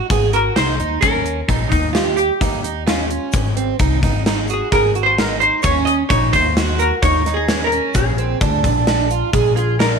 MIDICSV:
0, 0, Header, 1, 5, 480
1, 0, Start_track
1, 0, Tempo, 461538
1, 1066, Time_signature, 5, 2, 24, 8
1, 10391, End_track
2, 0, Start_track
2, 0, Title_t, "Hollow-body jazz guitar"
2, 0, Program_c, 0, 26
2, 348, Note_on_c, 0, 70, 84
2, 570, Note_off_c, 0, 70, 0
2, 581, Note_on_c, 0, 72, 89
2, 1044, Note_off_c, 0, 72, 0
2, 1048, Note_on_c, 0, 70, 78
2, 1760, Note_on_c, 0, 63, 80
2, 1799, Note_off_c, 0, 70, 0
2, 2005, Note_on_c, 0, 65, 77
2, 2021, Note_off_c, 0, 63, 0
2, 2248, Note_off_c, 0, 65, 0
2, 2252, Note_on_c, 0, 67, 84
2, 2976, Note_off_c, 0, 67, 0
2, 2980, Note_on_c, 0, 65, 70
2, 3429, Note_off_c, 0, 65, 0
2, 4685, Note_on_c, 0, 68, 81
2, 4908, Note_on_c, 0, 70, 87
2, 4922, Note_off_c, 0, 68, 0
2, 5227, Note_off_c, 0, 70, 0
2, 5232, Note_on_c, 0, 72, 86
2, 5394, Note_off_c, 0, 72, 0
2, 5394, Note_on_c, 0, 70, 89
2, 5614, Note_off_c, 0, 70, 0
2, 5619, Note_on_c, 0, 72, 85
2, 5845, Note_off_c, 0, 72, 0
2, 5854, Note_on_c, 0, 73, 87
2, 6082, Note_off_c, 0, 73, 0
2, 6086, Note_on_c, 0, 75, 102
2, 6153, Note_off_c, 0, 75, 0
2, 6332, Note_on_c, 0, 73, 89
2, 6562, Note_off_c, 0, 73, 0
2, 6581, Note_on_c, 0, 72, 103
2, 7063, Note_on_c, 0, 70, 85
2, 7078, Note_off_c, 0, 72, 0
2, 7287, Note_off_c, 0, 70, 0
2, 7304, Note_on_c, 0, 73, 93
2, 7632, Note_on_c, 0, 68, 78
2, 7635, Note_off_c, 0, 73, 0
2, 7927, Note_off_c, 0, 68, 0
2, 7947, Note_on_c, 0, 70, 79
2, 8244, Note_off_c, 0, 70, 0
2, 8270, Note_on_c, 0, 68, 65
2, 9427, Note_off_c, 0, 68, 0
2, 9942, Note_on_c, 0, 68, 73
2, 10180, Note_off_c, 0, 68, 0
2, 10184, Note_on_c, 0, 70, 78
2, 10391, Note_off_c, 0, 70, 0
2, 10391, End_track
3, 0, Start_track
3, 0, Title_t, "Twelve-string acoustic guitar"
3, 0, Program_c, 1, 25
3, 111, Note_on_c, 1, 68, 74
3, 304, Note_off_c, 1, 68, 0
3, 348, Note_on_c, 1, 66, 66
3, 542, Note_off_c, 1, 66, 0
3, 586, Note_on_c, 1, 63, 72
3, 781, Note_off_c, 1, 63, 0
3, 829, Note_on_c, 1, 63, 70
3, 1023, Note_off_c, 1, 63, 0
3, 1068, Note_on_c, 1, 61, 85
3, 1457, Note_off_c, 1, 61, 0
3, 1547, Note_on_c, 1, 63, 72
3, 1937, Note_off_c, 1, 63, 0
3, 2026, Note_on_c, 1, 67, 74
3, 2416, Note_off_c, 1, 67, 0
3, 2507, Note_on_c, 1, 63, 68
3, 2702, Note_off_c, 1, 63, 0
3, 2743, Note_on_c, 1, 63, 68
3, 2939, Note_off_c, 1, 63, 0
3, 2985, Note_on_c, 1, 61, 71
3, 3180, Note_off_c, 1, 61, 0
3, 3233, Note_on_c, 1, 61, 67
3, 3620, Note_off_c, 1, 61, 0
3, 3710, Note_on_c, 1, 60, 76
3, 3903, Note_off_c, 1, 60, 0
3, 3956, Note_on_c, 1, 63, 76
3, 4147, Note_off_c, 1, 63, 0
3, 4199, Note_on_c, 1, 63, 71
3, 4389, Note_off_c, 1, 63, 0
3, 4432, Note_on_c, 1, 63, 73
3, 4624, Note_off_c, 1, 63, 0
3, 4675, Note_on_c, 1, 66, 71
3, 4866, Note_off_c, 1, 66, 0
3, 4909, Note_on_c, 1, 68, 76
3, 5102, Note_off_c, 1, 68, 0
3, 5152, Note_on_c, 1, 66, 75
3, 5345, Note_off_c, 1, 66, 0
3, 5396, Note_on_c, 1, 63, 75
3, 5587, Note_off_c, 1, 63, 0
3, 5633, Note_on_c, 1, 63, 66
3, 5825, Note_off_c, 1, 63, 0
3, 5879, Note_on_c, 1, 61, 89
3, 6264, Note_off_c, 1, 61, 0
3, 6350, Note_on_c, 1, 63, 71
3, 6739, Note_off_c, 1, 63, 0
3, 6831, Note_on_c, 1, 66, 77
3, 7219, Note_off_c, 1, 66, 0
3, 7315, Note_on_c, 1, 63, 78
3, 7506, Note_off_c, 1, 63, 0
3, 7557, Note_on_c, 1, 63, 75
3, 7747, Note_off_c, 1, 63, 0
3, 7798, Note_on_c, 1, 61, 78
3, 7988, Note_off_c, 1, 61, 0
3, 8037, Note_on_c, 1, 61, 78
3, 8423, Note_off_c, 1, 61, 0
3, 8514, Note_on_c, 1, 60, 75
3, 8706, Note_off_c, 1, 60, 0
3, 8754, Note_on_c, 1, 62, 76
3, 8946, Note_off_c, 1, 62, 0
3, 8998, Note_on_c, 1, 62, 76
3, 9188, Note_off_c, 1, 62, 0
3, 9236, Note_on_c, 1, 62, 77
3, 9427, Note_off_c, 1, 62, 0
3, 9474, Note_on_c, 1, 65, 72
3, 9666, Note_off_c, 1, 65, 0
3, 9710, Note_on_c, 1, 68, 75
3, 9903, Note_off_c, 1, 68, 0
3, 9943, Note_on_c, 1, 65, 69
3, 10139, Note_off_c, 1, 65, 0
3, 10190, Note_on_c, 1, 62, 72
3, 10383, Note_off_c, 1, 62, 0
3, 10391, End_track
4, 0, Start_track
4, 0, Title_t, "Upright bass"
4, 0, Program_c, 2, 32
4, 105, Note_on_c, 2, 32, 81
4, 497, Note_off_c, 2, 32, 0
4, 582, Note_on_c, 2, 36, 69
4, 800, Note_off_c, 2, 36, 0
4, 826, Note_on_c, 2, 39, 74
4, 1042, Note_off_c, 2, 39, 0
4, 1065, Note_on_c, 2, 39, 81
4, 1458, Note_off_c, 2, 39, 0
4, 1542, Note_on_c, 2, 34, 90
4, 1740, Note_off_c, 2, 34, 0
4, 1788, Note_on_c, 2, 39, 81
4, 2375, Note_off_c, 2, 39, 0
4, 2507, Note_on_c, 2, 39, 77
4, 3291, Note_off_c, 2, 39, 0
4, 3469, Note_on_c, 2, 32, 88
4, 3860, Note_off_c, 2, 32, 0
4, 3948, Note_on_c, 2, 36, 79
4, 4190, Note_on_c, 2, 32, 78
4, 4205, Note_off_c, 2, 36, 0
4, 4777, Note_off_c, 2, 32, 0
4, 4910, Note_on_c, 2, 32, 80
4, 5692, Note_off_c, 2, 32, 0
4, 5862, Note_on_c, 2, 39, 90
4, 6256, Note_off_c, 2, 39, 0
4, 6346, Note_on_c, 2, 34, 85
4, 6542, Note_off_c, 2, 34, 0
4, 6584, Note_on_c, 2, 39, 88
4, 7173, Note_off_c, 2, 39, 0
4, 7305, Note_on_c, 2, 39, 86
4, 8090, Note_off_c, 2, 39, 0
4, 8261, Note_on_c, 2, 34, 93
4, 8655, Note_off_c, 2, 34, 0
4, 8750, Note_on_c, 2, 38, 82
4, 8987, Note_on_c, 2, 34, 82
4, 9002, Note_off_c, 2, 38, 0
4, 9575, Note_off_c, 2, 34, 0
4, 9707, Note_on_c, 2, 34, 83
4, 10391, Note_off_c, 2, 34, 0
4, 10391, End_track
5, 0, Start_track
5, 0, Title_t, "Drums"
5, 105, Note_on_c, 9, 36, 94
5, 107, Note_on_c, 9, 42, 75
5, 209, Note_off_c, 9, 36, 0
5, 211, Note_off_c, 9, 42, 0
5, 345, Note_on_c, 9, 42, 58
5, 347, Note_on_c, 9, 82, 15
5, 449, Note_off_c, 9, 42, 0
5, 451, Note_off_c, 9, 82, 0
5, 584, Note_on_c, 9, 82, 16
5, 585, Note_on_c, 9, 38, 104
5, 585, Note_on_c, 9, 42, 76
5, 688, Note_off_c, 9, 82, 0
5, 689, Note_off_c, 9, 38, 0
5, 689, Note_off_c, 9, 42, 0
5, 829, Note_on_c, 9, 42, 55
5, 933, Note_off_c, 9, 42, 0
5, 1060, Note_on_c, 9, 82, 55
5, 1066, Note_on_c, 9, 36, 103
5, 1068, Note_on_c, 9, 42, 68
5, 1164, Note_off_c, 9, 82, 0
5, 1170, Note_off_c, 9, 36, 0
5, 1172, Note_off_c, 9, 42, 0
5, 1303, Note_on_c, 9, 82, 15
5, 1308, Note_on_c, 9, 42, 60
5, 1407, Note_off_c, 9, 82, 0
5, 1412, Note_off_c, 9, 42, 0
5, 1546, Note_on_c, 9, 36, 92
5, 1549, Note_on_c, 9, 42, 73
5, 1650, Note_off_c, 9, 36, 0
5, 1653, Note_off_c, 9, 42, 0
5, 1773, Note_on_c, 9, 82, 17
5, 1785, Note_on_c, 9, 36, 73
5, 1788, Note_on_c, 9, 42, 61
5, 1877, Note_off_c, 9, 82, 0
5, 1889, Note_off_c, 9, 36, 0
5, 1892, Note_off_c, 9, 42, 0
5, 2026, Note_on_c, 9, 38, 94
5, 2026, Note_on_c, 9, 42, 78
5, 2130, Note_off_c, 9, 38, 0
5, 2130, Note_off_c, 9, 42, 0
5, 2257, Note_on_c, 9, 82, 45
5, 2271, Note_on_c, 9, 42, 60
5, 2361, Note_off_c, 9, 82, 0
5, 2375, Note_off_c, 9, 42, 0
5, 2507, Note_on_c, 9, 36, 96
5, 2508, Note_on_c, 9, 42, 85
5, 2611, Note_off_c, 9, 36, 0
5, 2612, Note_off_c, 9, 42, 0
5, 2746, Note_on_c, 9, 82, 16
5, 2750, Note_on_c, 9, 42, 65
5, 2850, Note_off_c, 9, 82, 0
5, 2854, Note_off_c, 9, 42, 0
5, 2991, Note_on_c, 9, 38, 110
5, 2991, Note_on_c, 9, 42, 83
5, 3095, Note_off_c, 9, 38, 0
5, 3095, Note_off_c, 9, 42, 0
5, 3229, Note_on_c, 9, 42, 61
5, 3333, Note_off_c, 9, 42, 0
5, 3457, Note_on_c, 9, 82, 58
5, 3467, Note_on_c, 9, 42, 85
5, 3469, Note_on_c, 9, 36, 95
5, 3561, Note_off_c, 9, 82, 0
5, 3571, Note_off_c, 9, 42, 0
5, 3573, Note_off_c, 9, 36, 0
5, 3705, Note_on_c, 9, 82, 15
5, 3712, Note_on_c, 9, 42, 64
5, 3809, Note_off_c, 9, 82, 0
5, 3816, Note_off_c, 9, 42, 0
5, 3946, Note_on_c, 9, 42, 78
5, 3948, Note_on_c, 9, 36, 107
5, 4050, Note_off_c, 9, 42, 0
5, 4052, Note_off_c, 9, 36, 0
5, 4182, Note_on_c, 9, 82, 18
5, 4190, Note_on_c, 9, 36, 70
5, 4191, Note_on_c, 9, 38, 36
5, 4191, Note_on_c, 9, 42, 56
5, 4286, Note_off_c, 9, 82, 0
5, 4294, Note_off_c, 9, 36, 0
5, 4295, Note_off_c, 9, 38, 0
5, 4295, Note_off_c, 9, 42, 0
5, 4432, Note_on_c, 9, 38, 106
5, 4432, Note_on_c, 9, 42, 76
5, 4536, Note_off_c, 9, 38, 0
5, 4536, Note_off_c, 9, 42, 0
5, 4661, Note_on_c, 9, 82, 45
5, 4677, Note_on_c, 9, 42, 57
5, 4765, Note_off_c, 9, 82, 0
5, 4781, Note_off_c, 9, 42, 0
5, 4910, Note_on_c, 9, 36, 102
5, 4911, Note_on_c, 9, 38, 32
5, 4911, Note_on_c, 9, 42, 74
5, 5014, Note_off_c, 9, 36, 0
5, 5015, Note_off_c, 9, 38, 0
5, 5015, Note_off_c, 9, 42, 0
5, 5149, Note_on_c, 9, 42, 55
5, 5253, Note_off_c, 9, 42, 0
5, 5392, Note_on_c, 9, 38, 105
5, 5392, Note_on_c, 9, 42, 76
5, 5496, Note_off_c, 9, 38, 0
5, 5496, Note_off_c, 9, 42, 0
5, 5631, Note_on_c, 9, 42, 57
5, 5735, Note_off_c, 9, 42, 0
5, 5852, Note_on_c, 9, 82, 67
5, 5862, Note_on_c, 9, 42, 78
5, 5866, Note_on_c, 9, 36, 105
5, 5956, Note_off_c, 9, 82, 0
5, 5966, Note_off_c, 9, 42, 0
5, 5970, Note_off_c, 9, 36, 0
5, 6096, Note_on_c, 9, 82, 20
5, 6107, Note_on_c, 9, 42, 62
5, 6200, Note_off_c, 9, 82, 0
5, 6211, Note_off_c, 9, 42, 0
5, 6345, Note_on_c, 9, 36, 101
5, 6346, Note_on_c, 9, 42, 78
5, 6449, Note_off_c, 9, 36, 0
5, 6450, Note_off_c, 9, 42, 0
5, 6582, Note_on_c, 9, 82, 17
5, 6587, Note_on_c, 9, 36, 74
5, 6590, Note_on_c, 9, 42, 66
5, 6686, Note_off_c, 9, 82, 0
5, 6691, Note_off_c, 9, 36, 0
5, 6694, Note_off_c, 9, 42, 0
5, 6831, Note_on_c, 9, 38, 106
5, 6831, Note_on_c, 9, 42, 80
5, 6935, Note_off_c, 9, 38, 0
5, 6935, Note_off_c, 9, 42, 0
5, 7062, Note_on_c, 9, 82, 43
5, 7069, Note_on_c, 9, 42, 66
5, 7166, Note_off_c, 9, 82, 0
5, 7173, Note_off_c, 9, 42, 0
5, 7307, Note_on_c, 9, 36, 110
5, 7312, Note_on_c, 9, 42, 87
5, 7411, Note_off_c, 9, 36, 0
5, 7416, Note_off_c, 9, 42, 0
5, 7541, Note_on_c, 9, 82, 17
5, 7552, Note_on_c, 9, 38, 31
5, 7552, Note_on_c, 9, 42, 62
5, 7645, Note_off_c, 9, 82, 0
5, 7656, Note_off_c, 9, 38, 0
5, 7656, Note_off_c, 9, 42, 0
5, 7784, Note_on_c, 9, 38, 106
5, 7784, Note_on_c, 9, 42, 85
5, 7888, Note_off_c, 9, 38, 0
5, 7888, Note_off_c, 9, 42, 0
5, 8029, Note_on_c, 9, 42, 63
5, 8133, Note_off_c, 9, 42, 0
5, 8260, Note_on_c, 9, 82, 58
5, 8266, Note_on_c, 9, 42, 77
5, 8267, Note_on_c, 9, 36, 101
5, 8364, Note_off_c, 9, 82, 0
5, 8370, Note_off_c, 9, 42, 0
5, 8371, Note_off_c, 9, 36, 0
5, 8505, Note_on_c, 9, 82, 15
5, 8509, Note_on_c, 9, 42, 58
5, 8609, Note_off_c, 9, 82, 0
5, 8613, Note_off_c, 9, 42, 0
5, 8745, Note_on_c, 9, 82, 16
5, 8747, Note_on_c, 9, 42, 77
5, 8748, Note_on_c, 9, 36, 108
5, 8849, Note_off_c, 9, 82, 0
5, 8851, Note_off_c, 9, 42, 0
5, 8852, Note_off_c, 9, 36, 0
5, 8986, Note_on_c, 9, 36, 71
5, 8989, Note_on_c, 9, 42, 57
5, 8989, Note_on_c, 9, 82, 17
5, 9090, Note_off_c, 9, 36, 0
5, 9093, Note_off_c, 9, 42, 0
5, 9093, Note_off_c, 9, 82, 0
5, 9227, Note_on_c, 9, 38, 111
5, 9227, Note_on_c, 9, 42, 73
5, 9331, Note_off_c, 9, 38, 0
5, 9331, Note_off_c, 9, 42, 0
5, 9465, Note_on_c, 9, 82, 49
5, 9471, Note_on_c, 9, 42, 53
5, 9569, Note_off_c, 9, 82, 0
5, 9575, Note_off_c, 9, 42, 0
5, 9708, Note_on_c, 9, 36, 108
5, 9708, Note_on_c, 9, 42, 79
5, 9812, Note_off_c, 9, 36, 0
5, 9812, Note_off_c, 9, 42, 0
5, 9954, Note_on_c, 9, 42, 60
5, 10058, Note_off_c, 9, 42, 0
5, 10195, Note_on_c, 9, 38, 108
5, 10195, Note_on_c, 9, 42, 75
5, 10299, Note_off_c, 9, 38, 0
5, 10299, Note_off_c, 9, 42, 0
5, 10391, End_track
0, 0, End_of_file